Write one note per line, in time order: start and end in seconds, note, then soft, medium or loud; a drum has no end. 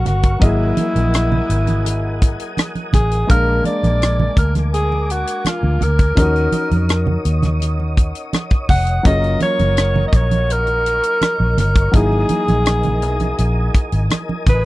0.00 0.37 F#3 medium
0.00 0.37 A#3 medium
0.00 0.38 C#4 medium
0.00 0.38 F#4 medium
0.00 0.39 A#4 medium
0.00 0.38 F5 medium
0.00 0.39 F5 medium
0.00 0.39 C#6 medium
0.05 0.35 G1 medium
0.05 0.45 F#4 medium
0.05 cross-stick soft
0.05 closed hi-hat medium
0.05 low conga medium
0.23 kick medium
0.23 closed hi-hat medium
0.39 0.71 G#1 medium
0.39 3.24 F#3 medium
0.39 3.25 A#3 medium
0.39 3.26 E4 medium
0.39 2.58 E4 medium
0.39 3.26 A#4 medium
0.39 3.25 D#5 medium
0.39 3.26 F#5 medium
0.39 6.13 G#5 medium
0.39 3.26 D#6 medium
0.39 kick loud
0.39 closed hi-hat medium
0.39 muted conga soft
0.44 3.27 G#4 medium
0.77 closed hi-hat medium
0.77 high conga medium
0.96 1.40 A#1 medium
0.96 closed hi-hat soft
0.96 high conga medium
1.14 cross-stick medium
1.14 closed hi-hat medium
1.32 muted conga soft
1.32 high conga medium
1.32 low conga medium
1.49 2.35 G#1 medium
1.49 closed hi-hat medium
1.67 closed hi-hat soft
1.67 high conga medium
1.85 closed hi-hat medium
1.85 muted conga soft
2.22 kick medium
2.22 closed hi-hat medium
2.40 closed hi-hat medium
2.57 cross-stick loud
2.57 closed hi-hat medium
2.57 high conga medium
2.75 closed hi-hat soft
2.75 high conga soft
2.93 3.23 A1 medium
2.93 3.27 G#4 medium
2.93 kick medium
2.93 cross-stick soft
2.93 closed hi-hat medium
2.93 low conga medium
3.11 closed hi-hat medium
3.27 3.59 A#1 medium
3.27 6.12 G#3 medium
3.27 6.13 A#3 medium
3.27 6.13 D4 medium
3.27 6.15 A#4 medium
3.27 3.63 A#4 loud
3.27 6.14 F5 medium
3.27 6.15 D6 medium
3.27 kick loud
3.27 closed hi-hat medium
3.32 6.14 A#4 medium
3.47 muted conga soft
3.64 4.34 D5 loud
3.64 closed hi-hat medium
3.64 high conga medium
3.83 4.28 A#1 medium
3.83 closed hi-hat soft
3.83 high conga medium
4.02 cross-stick loud
4.02 closed hi-hat medium
4.20 muted conga soft
4.20 high conga medium
4.20 low conga medium
4.37 5.23 D2 medium
4.37 4.54 A#4 medium
4.37 kick medium
4.37 closed hi-hat medium
4.55 cross-stick soft
4.55 closed hi-hat soft
4.55 high conga medium
4.74 5.13 G#4 medium
4.74 closed hi-hat medium
4.92 muted conga soft
5.10 5.49 F#4 medium
5.10 closed hi-hat medium
5.27 closed hi-hat medium
5.45 5.85 F4 medium
5.45 cross-stick loud
5.45 closed hi-hat medium
5.45 muted conga soft
5.45 high conga medium
5.63 5.78 D2 medium
5.63 high conga soft
5.81 6.11 D2 medium
5.81 7.26 A#4 medium
5.81 closed hi-hat medium
5.81 low conga medium
5.99 kick medium
5.99 closed hi-hat medium
6.15 6.47 D#2 medium
6.15 6.23 F3 medium
6.15 9.01 C#4 medium
6.15 9.01 D#4 medium
6.15 9.02 C#5 medium
6.15 14.65 D#5 medium
6.15 9.02 D#6 medium
6.15 kick loud
6.15 closed hi-hat medium
6.20 9.04 F#4 medium
6.20 9.03 A#4 medium
6.36 closed hi-hat soft
6.52 closed hi-hat medium
6.52 high conga medium
6.71 7.16 F2 medium
6.71 closed hi-hat soft
6.71 high conga medium
6.89 cross-stick loud
6.89 closed hi-hat medium
6.89 muted conga soft
7.07 muted conga soft
7.07 high conga medium
7.07 low conga medium
7.25 8.11 D#2 medium
7.25 closed hi-hat medium
7.43 cross-stick soft
7.43 closed hi-hat soft
7.43 high conga medium
7.43 low conga medium
7.60 closed hi-hat medium
7.60 muted conga soft
7.80 muted conga soft
7.97 kick medium
7.97 closed hi-hat medium
8.15 closed hi-hat medium
8.33 cross-stick medium
8.33 closed hi-hat medium
8.33 muted conga soft
8.33 high conga medium
8.50 kick medium
8.50 closed hi-hat soft
8.50 muted conga soft
8.69 8.99 F1 medium
8.69 9.03 F#5 loud
8.69 kick medium
8.69 open hi-hat medium
8.69 low conga medium
8.87 closed hi-hat medium
9.03 9.35 F#1 medium
9.03 11.89 F#3 medium
9.03 11.89 A#3 medium
9.03 11.90 C#4 medium
9.03 11.91 F4 medium
9.03 14.65 A#4 medium
9.03 9.40 D#5 loud
9.03 11.91 C#6 medium
9.03 kick loud
9.03 closed hi-hat medium
9.08 9.13 G#4 medium
9.14 11.94 A#4 medium
9.22 closed hi-hat soft
9.22 muted conga soft
9.40 10.03 C#5 loud
9.40 closed hi-hat medium
9.40 high conga medium
9.59 10.04 F#1 medium
9.59 closed hi-hat soft
9.59 high conga medium
9.77 cross-stick loud
9.77 closed hi-hat medium
9.96 high conga medium
9.96 low conga medium
10.08 10.17 D#5 medium
10.13 10.99 A#1 medium
10.13 10.53 C#5 medium
10.13 kick loud
10.13 closed hi-hat medium
10.31 closed hi-hat soft
10.31 high conga medium
10.50 11.59 A#4 loud
10.50 closed hi-hat medium
10.67 closed hi-hat soft
10.67 muted conga soft
10.86 closed hi-hat medium
11.03 closed hi-hat medium
11.21 cross-stick loud
11.21 closed hi-hat medium
11.21 high conga medium
11.40 11.55 A#1 medium
11.40 high conga soft
11.58 11.88 G1 medium
11.58 11.97 A#4 medium
11.58 cross-stick soft
11.58 closed hi-hat medium
11.58 low conga medium
11.75 kick medium
11.75 closed hi-hat medium
11.91 12.24 G#1 loud
11.91 14.65 F#3 medium
11.91 14.65 A#3 medium
11.91 14.65 D#4 medium
11.91 14.65 E4 medium
11.91 14.65 G#5 medium
11.91 14.65 D#6 medium
11.91 kick loud
11.91 closed hi-hat medium
11.91 muted conga soft
11.96 14.12 G#4 medium
11.96 14.65 G#4 medium
12.12 muted conga soft
12.29 closed hi-hat medium
12.29 high conga medium
12.48 13.03 A#1 medium
12.48 closed hi-hat soft
12.48 high conga medium
12.66 cross-stick loud
12.66 closed hi-hat medium
12.66 muted conga soft
12.83 closed hi-hat soft
12.83 muted conga soft
12.83 high conga medium
12.83 low conga medium
13.02 13.32 B1 medium
13.02 closed hi-hat medium
13.20 closed hi-hat soft
13.20 high conga medium
13.38 13.68 A#1 medium
13.38 closed hi-hat medium
13.38 muted conga soft
13.75 kick medium
13.75 closed hi-hat medium
13.92 14.07 G#1 medium
13.92 closed hi-hat medium
14.10 cross-stick loud
14.10 closed hi-hat medium
14.10 high conga medium
14.29 muted conga soft
14.29 high conga medium
14.47 14.65 A1 medium
14.47 14.65 B4 loud
14.47 kick medium
14.47 cross-stick soft
14.47 closed hi-hat medium
14.47 low conga medium